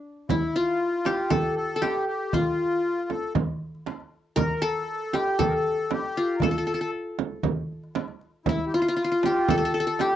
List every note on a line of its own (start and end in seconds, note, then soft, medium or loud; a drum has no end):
0.00 1.04 D4 soft
0.29 0.56 E4 medium
0.29 0.62 E4 medium
0.29 darbuka dum medium
0.29 frame drum loud
0.54 1.34 F4 medium
0.54 1.90 F4 medium
0.54 darbuka ka soft
0.67 darbuka ka soft
1.05 1.81 G4 medium
1.05 darbuka tek medium
1.05 frame drum medium
1.30 1.75 A4 loud
1.30 1.55 A4 medium
1.30 darbuka dum medium
1.30 frame drum medium
1.56 1.83 A4 medium
1.70 darbuka ka soft
1.76 2.93 A4 medium
1.82 2.05 G4 medium
1.82 3.07 G4 medium
1.82 darbuka tek medium
1.82 frame drum medium
1.96 darbuka ka soft
2.06 2.33 G4 medium
2.32 3.11 F4 medium
2.32 3.68 F4 medium
2.32 frame drum medium
2.32 darbuka dum medium
2.59 darbuka ka soft
2.72 darbuka ka soft
3.09 3.33 A4 medium
3.09 frame drum medium
3.35 frame drum medium
3.35 darbuka dum loud
3.75 darbuka ka soft
3.86 darbuka tek medium
3.86 frame drum medium
4.00 darbuka ka soft
4.36 4.68 A#4 loud
4.36 4.54 A#4 medium
4.36 frame drum loud
4.36 darbuka dum medium
4.55 4.62 A#4 medium
4.62 5.39 A4 loud
4.62 5.16 A4 medium
4.62 darbuka ka soft
4.77 darbuka ka soft
5.13 6.39 G4 medium
5.13 5.40 G4 medium
5.13 darbuka tek medium
5.13 frame drum medium
5.39 6.43 A4 medium
5.39 5.46 A4 medium
5.39 frame drum loud
5.39 darbuka dum medium
5.47 5.54 A#4 medium
5.55 5.92 A4 medium
5.78 darbuka ka soft
5.91 6.36 G4 medium
5.91 darbuka tek medium
5.91 frame drum medium
6.03 darbuka ka soft
6.17 7.52 F4 medium
6.35 6.42 A#4 medium
6.40 6.51 A4 medium
6.40 darbuka dum medium
6.40 frame drum medium
6.44 6.91 A4 medium
6.51 6.58 A4 medium
6.51 darbuka ka soft
6.58 6.66 A4 medium
6.67 6.74 A4 medium
6.74 6.80 A4 medium
6.80 7.98 A4 medium
6.80 darbuka ka soft
6.92 darbuka ka soft
7.19 frame drum medium
7.43 darbuka dum medium
7.43 frame drum medium
7.83 darbuka ka soft
7.95 darbuka tek medium
7.95 frame drum medium
8.08 darbuka ka soft
8.21 darbuka ka soft
8.46 8.65 E4 medium
8.46 8.80 E4 medium
8.46 darbuka dum medium
8.46 frame drum loud
8.66 8.72 G4 medium
8.72 9.52 F4 medium
8.72 8.81 F4 medium
8.72 darbuka ka soft
8.82 8.88 F4 medium
8.86 8.96 F4 medium
8.86 darbuka ka soft
8.97 9.04 F4 medium
9.04 9.11 F4 medium
9.12 10.16 F4 medium
9.23 10.00 G4 medium
9.23 darbuka tek medium
9.23 frame drum medium
9.48 10.01 A4 loud
9.48 9.57 A4 loud
9.48 frame drum loud
9.48 darbuka dum loud
9.58 9.65 A4 medium
9.65 9.74 A4 medium
9.74 9.80 A4 medium
9.80 9.86 A4 medium
9.87 10.16 A4 medium
9.87 darbuka ka soft
9.99 10.16 G4 medium
9.99 darbuka tek medium
9.99 frame drum medium